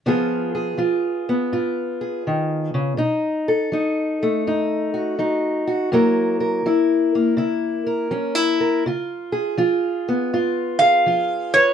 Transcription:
0.06 C#3 F3 B3 F4 G#4
0.55 G#4
0.78 F3 F4
1.29 B3
1.52 G#2 F4
2.01 G#4
2.27 D#3
2.74 C#3
2.97 B2 D#4
3.48 A4
3.72 F#3 D#4
4.23 A3
4.47 F#2 D#4
4.94 F#4
5.19 F#3 D#4
5.67 F#4
5.92 F#2 F#3 A#3 E4 A#4
6.40 A#4
6.66 F#3 E4
7.15 A#3
7.37 C#3 E4
7.87 A#4
8.11 F#3 C#4
8.35 E4
8.61 A#4
8.86 C#3 F4
9.32 G#4
9.58 F3 F4
10.09 B3
10.33 G#2 F4
10.79 G#4 F5
11.06 F3 F4
11.54 B4 C#5

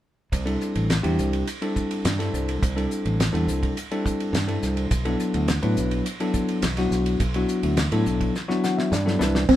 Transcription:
0.32 C2, kick, hi-hat pedal, ride
0.46 G3 C4 D4 E4 A4, ride
0.61 hi-hat pedal
0.75 A1, ride
0.90 snare, hi-hat pedal, ride
1.03 E2 G3 C4 D4 E4 G4, ride
1.19 C2, hi-hat pedal
1.33 ride
1.47 hi-hat pedal, ride
1.62 G3 C4 D4 E4 A4, ride
1.76 kick, hi-hat pedal
1.91 ride
2.05 G2, snare, hi-hat pedal, ride
2.19 G3 C4 D4 E4 A4, snare, ride
2.33 C2, hi-hat pedal
2.49 ride
2.62 C2, kick, hi-hat pedal, ride
2.76 G3 C4 D4 E4 A4, ride
2.91 hi-hat pedal
3.05 A1, ride
3.20 snare, hi-hat pedal, ride
3.33 E2 G3 C4 D4 E4 A4, ride
3.47 C2, hi-hat pedal
3.63 kick, ride
3.77 hi-hat pedal, ride
3.91 G3 C4 D4 E4 A4, ride
4.06 kick, hi-hat pedal
4.20 ride
4.33 G2, snare, hi-hat pedal, ride
4.48 G3 C4 D4 E4 A4, ride
4.63 C2, snare, hi-hat pedal
4.77 ride
4.91 B1, kick, hi-hat pedal, ride
5.05 F#3 B3 D4 E4 A4, ride
5.20 hi-hat pedal
5.34 D2, ride
5.48 snare, hi-hat pedal, ride
5.63 A2 F#3 B3 D4 E4 B4, ride
5.77 B1, hi-hat pedal
5.91 ride
6.06 hi-hat pedal, ride
6.20 F#3 B3 D4 E4 A4, ride
6.34 kick, hi-hat pedal
6.49 ride
6.62 B1, snare, hi-hat pedal, ride
6.77 F#3 B3 D4 E4 F#4, snare, ride
6.91 B1, snare, hi-hat pedal
7.06 ride
7.20 B1, kick, hi-hat pedal, ride
7.34 F#3 B3 D4 E4 F#4, ride
7.49 hi-hat pedal
7.63 D2, ride
7.77 snare, hi-hat pedal, ride
7.92 A2 F#3 B3 D4 E4 A4, ride
8.06 B1, hi-hat pedal
8.21 kick, ride
8.35 snare, hi-hat pedal
8.48 F#3 B3 D4 E4 F#4, snare
8.64 F#5, snare, hi-hat pedal
8.78 E5, snare
8.92 G2 D5, snare, hi-hat pedal
9.05 F#3 B3 D4 E4 A4, snare
9.19 C2 G3 C4 D4 E4 B4, snare, hi-hat pedal
9.35 snare
9.49 C2 C4, kick, crash

